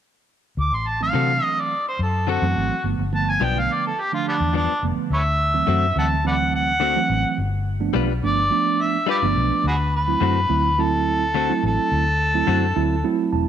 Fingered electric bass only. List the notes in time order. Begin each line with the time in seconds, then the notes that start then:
0.57 D2
0.72 A1
1.14 C3
1.99 F#2
2.42 F#2
2.56 G#1
2.84 G1
2.98 G1
3.41 B1
4.40 E2
4.83 F1
4.97 muted fingered electric bass stroke
5.10 D2
5.68 F#2
5.96 D2
7.09 A1
7.24 muted fingered electric bass stroke
7.38 G1
7.95 B1
8.23 G1
9.22 G1
9.36 B1
9.64 D2
10.21 F#2
10.50 D2
11.63 A1
11.78 muted fingered electric bass stroke
11.92 D2
12.48 F#2
12.76 D2
13.33 E1